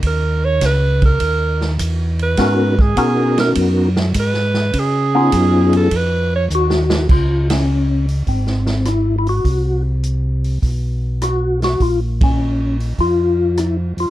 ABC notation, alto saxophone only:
X:1
M:4/4
L:1/8
Q:"Swing" 1/4=102
K:C#mix
V:1 name="Alto saxophone"
A c B A3 z B- | B G2 A z2 B2 | G3 =A B c z2 | [K:Db] z8 |
z8 | z8 |]